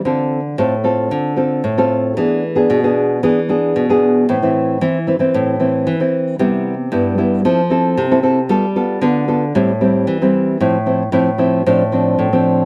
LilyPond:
\new Staff \with { instrumentName = "Nylon-string guitar" } { \time 4/4 \key a \minor \tempo 4 = 114 << { <c' f' a'>8. r16 <c' f' a'>16 r16 <c' f' a'>4 <c' f' a'>8 r16 <c' f' a'>8. | <b d' gis'>8 r16 <b d' gis'>8 <b d' gis'>8. <b d' gis'>16 r16 <b d' gis'>8. <b d' gis'>8. | <e c' e'>16 <e c' e'>8. <e c' e'>16 r16 <e c' e'>16 <e c' e'>8. <e c' e'>8. <e c' e'>8. | \key c \major <g b e'>8. r16 <g b e'>8 <g b e'>8 <c' e' a'>16 r16 <c' e' a'>8. <c' e' a'>16 <c' e' a'>16 r16 |
<b f' a'>16 r16 <b f' a'>8 <b f' a'>8 <b f' a'>16 r16 <g c' e'>16 r16 <g c' e'>8. <g c' e'>8. | <f c' e'>16 r16 <f c' e'>16 r16 <f c' e'>16 r16 <f c' e'>8 <f c' d'>16 r16 <f c' d'>8. <f c' d'>8. | } \\ { d4 a,4 d4 a,4 | e4 b,4 e4 b,4 | a,4 e4 a,4 e4 | c4 g,4 f4 c4 |
g4 d4 a,4 e4 | a,4 a,4 a,4 a,4 | } >> }